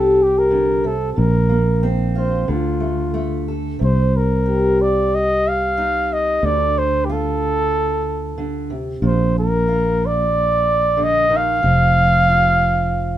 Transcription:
Already playing: fretless electric bass C2, steel-string acoustic guitar C3 G3 D#4 G4, flugelhorn A4
0.23 flugelhorn G4
0.38 flugelhorn A#4
0.51 steel-string acoustic guitar D3
0.84 steel-string acoustic guitar C3, flugelhorn A4
1.12 steel-string acoustic guitar A#2, flugelhorn A4
1.18 fretless electric bass A#1, flugelhorn A#4
1.49 steel-string acoustic guitar A#3
1.83 steel-string acoustic guitar C4
2.15 steel-string acoustic guitar F4, flugelhorn C5
2.48 fretless electric bass D2, steel-string acoustic guitar D3, flugelhorn F4
2.80 steel-string acoustic guitar A3
3.14 steel-string acoustic guitar A3
3.48 steel-string acoustic guitar A4
3.79 fretless electric bass C2, steel-string acoustic guitar C3
3.84 flugelhorn C5
4.16 flugelhorn A#4
4.46 steel-string acoustic guitar G4
4.82 flugelhorn D5
5.15 flugelhorn D#5
5.48 flugelhorn F5
5.78 steel-string acoustic guitar D#4
6.13 flugelhorn D#5
6.43 fretless electric bass D2, steel-string acoustic guitar D3, flugelhorn D5
6.78 flugelhorn C5
7.05 flugelhorn G4
7.09 steel-string acoustic guitar F4, flugelhorn A4
8.38 steel-string acoustic guitar D3
8.70 steel-string acoustic guitar C3
9.02 fretless electric bass A#1, steel-string acoustic guitar A#2, flugelhorn C5
9.39 flugelhorn A#4
9.68 steel-string acoustic guitar F4
10.06 flugelhorn D5
10.97 steel-string acoustic guitar D3
11.03 flugelhorn D#5
11.30 steel-string acoustic guitar D#3
11.36 flugelhorn F5
11.63 fretless electric bass F1, steel-string acoustic guitar F3
12.29 steel-string acoustic guitar F4

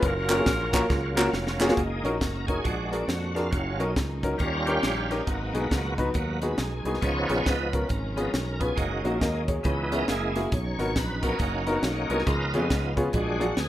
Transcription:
Already playing: tonewheel organ C#4 F4
0.02 fingered electric bass F#1, tonewheel organ F#3 A#3, saxophone section C#4 F4 A#4, kick, closed hi-hat
0.29 grand piano A#3 C#4 F4 F#4 A#4, clap, closed hi-hat
0.38 grand piano A#3 C#4 F4 F#4 G#4
0.46 fingered electric bass A#1, kick, snare, closed hi-hat
0.73 grand piano A#3 C#4 F4 F#4 A#4, kick, clap, closed hi-hat
0.90 fingered electric bass C#2, kick, snare
1.16 grand piano A#3 C#4 F4 F#4 A#4, snare, clap
1.33 fingered electric bass F1, snare
1.47 snare
1.60 grand piano A#3 C#4 F4 F#4 G#4, snare, clap
1.69 grand piano A#3 C#4 F4 F#4 G#4, snare
1.77 fingered electric bass F#1, tonewheel organ G#3 A#3 D#4, string section A#3 C#4 D#4 F#4, kick, closed hi-hat
2.04 fingered electric bass A#1, grand piano C#4 D#4 F#4 A#4, closed hi-hat
2.20 fingered electric bass F#1, tonewheel organ A#4, kick, snare, closed hi-hat
2.47 grand piano C#4 D#4 F#4 A#4, tonewheel organ G#4, kick, closed hi-hat
2.64 fingered electric bass A#1, grand piano A#2, tonewheel organ G#3 D4 F#4, string section G#3 D4, kick, closed hi-hat
2.91 tonewheel organ D4, grand piano D4 F#4 G#4 A#4, closed hi-hat
3.07 fingered electric bass F2, tonewheel organ F#4, snare, closed hi-hat
3.26 tonewheel organ F#4
3.35 grand piano D4 F#4 G#4 A#4, tonewheel organ F4, snare, closed hi-hat
3.51 fingered electric bass F#1, tonewheel organ F#3 C#4 F4, string section F#3 C#4 D#4, kick, closed hi-hat
3.79 fingered electric bass B1, grand piano C#4 D#4 F#4 A#4, tonewheel organ D#4, closed hi-hat
3.96 fingered electric bass C#2, kick, snare, closed hi-hat
4.23 grand piano C#4 D#4 F#4 A#4, kick, closed hi-hat
4.38 fingered electric bass D#2, grand piano D#3, tonewheel organ G3 C#4 F4 A#4, string section G3, kick, closed hi-hat
4.66 grand piano C#4 D#4 G4 A#4, tonewheel organ G4, closed hi-hat
4.83 fingered electric bass A#1, snare, closed hi-hat
5.10 grand piano C#4 D#4 G4 A#4, tonewheel organ D#4, snare, closed hi-hat
5.26 fingered electric bass G#1, grand piano G#2, string section B2 F#3 G#3, tonewheel organ A#3 B3 F#4, kick, closed hi-hat
5.54 fingered electric bass B1, grand piano B3 D#4 F#4 G#4, closed hi-hat
5.71 fingered electric bass C#2, kick, snare, closed hi-hat
5.98 grand piano B3 D#4 F#4 B4, kick, closed hi-hat
6.14 fingered electric bass D#2, tonewheel organ A#3 B3 F#4, kick, closed hi-hat
6.42 grand piano B3 D#4 F#4 G#4, tonewheel organ B4, closed hi-hat
6.58 fingered electric bass B1, tonewheel organ G#4, snare, closed hi-hat
6.85 fingered electric bass C2, grand piano B3 D#4 F#4 G#4, closed hi-hat
6.94 snare
7.01 fingered electric bass C#2, grand piano C#3, tonewheel organ F3 B3 D#4 C#5, string section F3 C#4, kick, closed hi-hat
7.29 fingered electric bass A#1, grand piano B3 C#4 F4 G#4, closed hi-hat
7.44 fingered electric bass C#2, tonewheel organ B4, kick, snare, closed hi-hat
7.73 grand piano B3 C#4 F4 A#4, kick, closed hi-hat
7.88 fingered electric bass G#1, tonewheel organ A#4, kick, closed hi-hat
8.16 tonewheel organ F3 B3 D#4, grand piano B3 C#4 F4 G#4, closed hi-hat
8.34 fingered electric bass B1, snare, closed hi-hat
8.60 grand piano B3 C#4 F4 B4, tonewheel organ G#4, kick, closed hi-hat
8.76 fingered electric bass F#1, string section D#3 F#3 A#3, tonewheel organ G#3 A#3 D#4 F#4, kick, closed hi-hat
9.04 fingered electric bass A#1, grand piano A#3 C#4 D#4 F#4, closed hi-hat
9.21 fingered electric bass D#2, grand piano A#4 D#5, kick, snare, closed hi-hat
9.48 grand piano G#4 C#5, kick, closed hi-hat
9.63 fingered electric bass C#2, grand piano C#3, tonewheel organ E3 B3 D#4, string section E3 G#3 B3 C#4, kick, closed hi-hat
9.92 grand piano B3 C#4 E4 G#4, tonewheel organ A#4, closed hi-hat
10.08 fingered electric bass F#1, string section F#3 C#4 E4, tonewheel organ G#3 A#3 E4 G#4, snare, closed hi-hat
10.36 grand piano A#3 E4 F#4 G#4, snare, closed hi-hat
10.52 fingered electric bass B1, grand piano B2, string section D#4, tonewheel organ C#5, kick, closed hi-hat
10.79 fingered electric bass G#1, grand piano B3 D#4 F#4 A#4, closed hi-hat
10.96 fingered electric bass A#1, tonewheel organ B4, kick, snare, closed hi-hat
11.22 tonewheel organ A#3 C#4 D#4, grand piano B3 D#4 F#4 A#4, kick, closed hi-hat
11.39 fingered electric bass F#1, tonewheel organ F#4, kick, closed hi-hat
11.66 grand piano B3 D#4 F#4 A#4, closed hi-hat
11.82 fingered electric bass B1, snare, closed hi-hat
12.09 fingered electric bass C2, grand piano B3 D#4 F#4 A#4, tonewheel organ G#4, closed hi-hat
12.19 snare
12.26 fingered electric bass C#2, grand piano C#3, string section F3 G#3 C#4, tonewheel organ B3 D#4 F4 A#4, kick, closed hi-hat
12.54 fingered electric bass F2, grand piano B3 C#4 F4 G#4, closed hi-hat
12.70 fingered electric bass C#2, kick, snare, closed hi-hat
12.97 grand piano B3 C#4 F4 G#4, kick, closed hi-hat
13.13 fingered electric bass A#1, grand piano A#2, string section F#3 A#3 D4, tonewheel organ G#3 D4 F#4 G#4, kick, closed hi-hat
13.40 grand piano A#3 D4 F#4 G#4, tonewheel organ F#4, closed hi-hat
13.57 fingered electric bass D2, tonewheel organ G#4, snare, closed hi-hat

